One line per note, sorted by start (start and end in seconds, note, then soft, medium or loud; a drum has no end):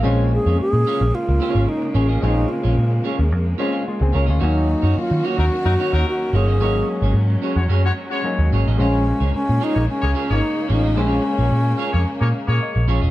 0.00 2.18 G#3 medium
0.00 6.56 A#3 medium
0.00 2.18 C4 medium
0.00 0.29 C#4 medium
0.00 0.29 F4 medium
0.00 0.29 G#4 loud
0.04 0.37 A#1 loud
0.04 4.38 C#3 medium
0.04 4.38 G#3 medium
0.04 2.19 C#4 medium
0.04 2.19 F4 medium
0.04 0.29 C#5 loud
0.31 0.58 G#4 medium
0.31 muted clean electric guitar stroke medium
0.46 0.56 F2 medium
0.46 0.58 C#4 medium
0.46 0.58 F4 medium
0.46 0.58 G#4 soft
0.46 0.58 C#5 medium
0.60 1.16 G#4 loud
0.60 muted clean electric guitar stroke soft
0.60 muted picked electric bass stroke soft
0.73 0.83 A#2 medium
0.73 muted clean electric guitar stroke medium
0.87 1.03 C#4 medium
0.87 1.01 F4 medium
0.87 1.01 G#4 loud
0.87 1.00 C#5 medium
1.01 1.11 A#1 medium
1.01 muted clean electric guitar stroke medium
1.14 1.70 F4 loud
1.14 muted clean electric guitar stroke soft
1.29 1.38 C#2 medium
1.29 muted clean electric guitar stroke medium
1.40 1.56 C#4 loud
1.40 1.56 F4 loud
1.40 1.55 G#4 loud
1.40 1.54 C#5 loud
1.55 1.65 G#1 medium
1.55 1.66 C#4 soft
1.55 1.67 F4 soft
1.55 1.67 G#4 medium
1.55 1.67 C#5 medium
1.68 1.97 D#4 medium
1.68 muted clean electric guitar stroke soft
1.82 muted clean electric guitar stroke medium
1.94 2.16 A1 medium
1.94 2.09 C#4 medium
1.94 2.23 C#4 medium
1.94 2.08 F4 medium
1.94 2.08 G#4 medium
1.94 2.08 C#5 medium
2.08 2.21 C#4 medium
2.08 2.21 F4 medium
2.08 2.21 G#4 medium
2.08 2.21 D#5 medium
2.22 2.44 A#1 medium
2.22 3.56 G#3 medium
2.22 3.56 C4 medium
2.22 2.48 C#4 medium
2.22 3.57 C#4 medium
2.22 2.50 D#4 loud
2.22 2.48 F4 medium
2.22 3.58 F4 medium
2.22 2.48 G#4 medium
2.22 2.48 C#5 medium
2.49 3.04 F4 medium
2.49 muted clean electric guitar stroke soft
2.63 2.75 A#1 medium
2.63 2.75 C#4 medium
2.63 2.76 F4 medium
2.63 2.76 G#4 medium
2.63 2.75 C#5 medium
2.76 2.99 A#2 medium
2.76 muted clean electric guitar stroke soft
2.91 muted clean electric guitar stroke soft
3.04 3.21 C#4 medium
3.04 3.19 F4 medium
3.04 3.17 G#4 medium
3.04 3.17 C#5 medium
3.18 3.32 D#2 medium
3.18 muted clean electric guitar stroke soft
3.31 3.53 F2 loud
3.31 muted clean electric guitar stroke soft
3.45 muted clean electric guitar stroke soft
3.58 3.87 G#3 medium
3.58 3.87 C4 medium
3.58 3.72 C#4 medium
3.58 3.87 C#4 medium
3.58 3.71 F4 medium
3.58 3.87 F4 medium
3.58 3.71 G#4 medium
3.58 3.70 C#5 medium
3.72 3.83 C#4 medium
3.72 3.83 F4 medium
3.72 3.83 G#4 medium
3.72 3.84 C#5 medium
3.84 muted clean electric guitar stroke soft
3.88 4.01 G#3 soft
3.88 4.01 F4 medium
4.00 4.11 C#2 medium
4.00 4.14 C4 medium
4.00 4.14 G#4 medium
4.00 muted clean electric guitar stroke soft
4.12 4.26 C#2 medium
4.12 4.27 C#4 medium
4.12 4.29 C#4 medium
4.12 4.26 F4 medium
4.12 4.25 G#4 medium
4.12 4.28 A#4 medium
4.12 4.26 C#5 medium
4.26 4.38 D2 medium
4.26 4.39 C#4 soft
4.26 4.39 F4 medium
4.26 4.39 G#4 medium
4.26 4.39 D#5 medium
4.30 4.55 F4 soft
4.30 4.55 C#5 medium
4.39 4.74 D#2 medium
4.39 6.58 D#3 medium
4.39 6.29 F#3 medium
4.39 4.65 A#3 medium
4.39 6.30 A#3 medium
4.39 8.75 C#4 medium
4.39 4.66 D#4 medium
4.39 5.00 D#4 medium
4.39 4.66 F#4 medium
4.39 6.58 F#4 medium
4.39 4.66 C#5 medium
4.43 6.30 C#4 medium
4.43 6.31 F5 medium
4.67 muted clean electric guitar stroke soft
4.82 4.93 F#2 medium
4.82 4.95 A#3 soft
4.82 4.95 D#4 medium
4.82 4.94 F#4 medium
4.82 4.94 C#5 medium
4.96 5.28 F4 medium
4.96 muted clean electric guitar stroke soft
4.96 muted picked electric bass stroke soft
5.10 5.21 D#3 medium
5.10 muted clean electric guitar stroke soft
5.24 5.40 A#3 medium
5.24 5.38 D#4 medium
5.24 5.37 F#4 medium
5.24 6.07 F#4 loud
5.24 5.37 C#5 medium
5.37 5.48 D#2 medium
5.37 5.46 F#3 medium
5.37 5.46 D#4 medium
5.37 5.46 A#4 medium
5.37 muted clean electric guitar stroke medium
5.51 muted clean electric guitar stroke soft
5.65 5.75 F#2 medium
5.65 5.73 F#3 medium
5.65 5.73 D#4 loud
5.65 5.73 A#4 medium
5.65 muted clean electric guitar stroke soft
5.79 5.94 A#3 medium
5.79 5.93 D#4 medium
5.79 5.93 F#4 loud
5.79 5.92 C#5 loud
5.92 6.03 D#2 medium
5.92 6.30 F#3 medium
5.92 6.05 A#3 soft
5.92 6.30 D#4 medium
5.92 6.05 D#4 medium
5.92 6.05 F#4 medium
5.92 6.30 A#4 loud
5.92 6.04 C#5 medium
6.06 6.37 F#4 medium
6.06 muted clean electric guitar stroke soft
6.21 muted clean electric guitar stroke soft
6.33 6.61 G1 medium
6.33 6.60 F#3 soft
6.33 6.48 A#3 medium
6.33 6.61 A#3 soft
6.33 6.61 C#4 soft
6.33 6.48 D#4 medium
6.33 6.61 F4 soft
6.33 6.47 F#4 medium
6.33 7.16 G#4 medium
6.33 6.47 C#5 medium
6.48 6.60 A#3 medium
6.48 6.60 D#4 medium
6.48 6.59 F#4 medium
6.48 6.59 D#5 medium
6.59 6.81 G#1 loud
6.59 8.76 F#3 medium
6.59 8.21 F#3 medium
6.59 13.11 G#3 medium
6.59 8.22 A#3 medium
6.59 6.85 C#4 medium
6.59 8.22 C#4 medium
6.59 6.86 F#4 medium
6.59 6.86 G#4 medium
6.59 6.86 C#5 medium
6.64 8.23 D#4 medium
6.88 muted clean electric guitar stroke soft
7.02 7.12 G#1 medium
7.02 7.13 C#4 soft
7.02 7.14 F#4 medium
7.02 7.14 G#4 medium
7.02 7.14 C#5 medium
7.14 7.35 G#2 medium
7.14 muted clean electric guitar stroke soft
7.30 muted clean electric guitar stroke soft
7.42 7.58 C#4 medium
7.42 7.57 F#4 medium
7.42 7.56 G#4 medium
7.42 7.56 C#5 medium
7.56 7.66 F2 medium
7.56 7.64 G#3 medium
7.56 7.65 F#4 medium
7.56 7.64 C#5 medium
7.56 muted clean electric guitar stroke soft
7.68 7.90 F#2 medium
7.68 7.85 C#4 medium
7.68 7.83 F#4 medium
7.68 7.83 G#4 loud
7.68 7.82 C#5 medium
7.83 7.92 G#3 medium
7.83 7.92 F#4 loud
7.83 7.92 C#5 loud
7.83 muted clean electric guitar stroke soft
7.97 muted clean electric guitar stroke soft
8.10 8.49 G#3 medium
8.10 8.23 C#4 medium
8.10 8.49 F#4 medium
8.10 8.23 F#4 medium
8.10 8.23 G#4 medium
8.10 8.49 C#5 loud
8.10 8.23 C#5 medium
8.24 8.79 F#3 medium
8.24 8.79 A#3 medium
8.24 8.79 C#4 medium
8.24 8.79 D#4 medium
8.24 muted clean electric guitar stroke soft
8.39 8.49 D#2 medium
8.39 muted clean electric guitar stroke medium
8.52 8.63 G#1 medium
8.52 8.68 C#4 medium
8.52 8.67 F#4 medium
8.52 8.67 G#4 medium
8.52 8.67 C#5 medium
8.67 8.76 A1 medium
8.67 8.78 C#4 medium
8.67 8.79 F#4 medium
8.67 8.78 G#4 medium
8.67 8.78 D#5 medium
8.78 9.11 A#1 loud
8.78 13.11 C#3 medium
8.78 10.93 G#3 medium
8.78 13.11 A#3 medium
8.78 9.04 C#4 medium
8.78 10.94 C#4 medium
8.78 9.30 C#4 loud
8.78 9.04 F4 medium
8.78 10.94 F4 medium
8.78 9.05 G#4 loud
8.78 10.93 C5 medium
8.78 9.05 C#5 loud
9.06 muted clean electric guitar stroke soft
9.20 9.30 C#2 medium
9.20 9.32 C#4 medium
9.20 9.32 F4 medium
9.20 9.32 G#4 medium
9.20 9.32 C#5 medium
9.33 9.65 C#4 loud
9.33 muted clean electric guitar stroke soft
9.33 muted picked electric bass stroke soft
9.48 9.59 A#2 medium
9.48 muted clean electric guitar stroke soft
9.60 9.77 C#4 medium
9.60 9.89 D#4 loud
9.60 9.75 F4 medium
9.60 9.75 G#4 medium
9.60 9.74 C#5 medium
9.74 9.86 A#1 medium
9.74 9.83 A#3 medium
9.74 9.83 G#4 medium
9.74 9.83 C#5 medium
9.74 muted clean electric guitar stroke soft
9.88 10.33 C#4 loud
9.88 muted clean electric guitar stroke soft
10.02 10.13 C#2 medium
10.02 10.10 A#3 medium
10.02 10.10 G#4 medium
10.02 10.10 C#5 loud
10.02 muted clean electric guitar stroke medium
10.15 10.29 C#4 medium
10.15 10.28 F4 medium
10.15 10.27 G#4 loud
10.15 10.28 C#5 medium
10.29 10.40 G#1 medium
10.29 10.68 A#3 medium
10.29 10.40 C#4 soft
10.29 10.71 D#4 loud
10.29 10.40 F4 soft
10.29 10.41 G#4 medium
10.29 10.67 G#4 medium
10.29 10.41 C#5 medium
10.29 10.67 C#5 loud
10.41 muted clean electric guitar stroke soft
10.56 muted clean electric guitar stroke soft
10.68 10.97 A1 medium
10.68 10.84 C#4 medium
10.68 11.02 D#4 medium
10.68 10.83 F4 medium
10.68 10.83 G#4 medium
10.68 10.83 C#5 medium
10.84 10.95 C#4 medium
10.84 10.96 F4 medium
10.84 10.96 G#4 medium
10.84 10.96 D#5 medium
10.96 11.18 A#1 loud
10.96 13.11 G#3 medium
10.96 11.07 C4 medium
10.96 13.11 C#4 medium
10.96 11.08 E4 medium
10.96 11.08 G4 medium
10.96 13.11 G#4 medium
10.96 11.08 C5 medium
10.96 13.11 C5 medium
11.00 12.63 C#4 loud
11.07 11.22 C#4 medium
11.07 11.22 F4 medium
11.07 11.22 G#4 medium
11.07 11.22 C#5 medium
11.24 muted clean electric guitar stroke soft
11.38 11.49 A#1 medium
11.38 11.49 C#4 soft
11.38 11.50 F4 medium
11.38 11.50 G#4 medium
11.38 11.50 C#5 medium
11.51 11.73 A#2 loud
11.51 muted clean electric guitar stroke medium
11.65 muted clean electric guitar stroke soft
11.78 11.95 C#4 medium
11.78 11.92 F4 medium
11.78 11.92 G#4 loud
11.78 11.91 C#5 loud
11.93 12.04 F2 medium
11.93 12.01 A#3 medium
11.93 12.01 G#4 medium
11.93 12.01 C#5 medium
11.93 muted clean electric guitar stroke soft
12.05 muted clean electric guitar stroke soft
12.19 12.31 A#2 loud
12.19 12.29 A#3 medium
12.19 12.29 G#4 medium
12.19 12.29 C#5 medium
12.19 muted clean electric guitar stroke soft
12.35 12.60 F5 medium
12.48 12.58 A#2 medium
12.48 12.86 A#3 medium
12.48 12.86 G#4 loud
12.48 12.86 C#5 loud
12.48 muted clean electric guitar stroke medium
12.60 12.87 D#5 medium
12.60 muted clean electric guitar stroke soft
12.75 12.86 A#1 medium
12.75 muted clean electric guitar stroke medium
12.88 12.99 A#1 medium
12.88 13.02 C#4 medium
12.88 13.01 F4 medium
12.88 13.01 G#4 medium
12.88 13.11 C#5 medium
12.88 13.01 C#5 loud
13.02 13.11 E1 medium
13.02 13.11 C#4 soft
13.02 13.11 F4 medium
13.02 13.11 G#4 medium
13.02 13.11 D#5 medium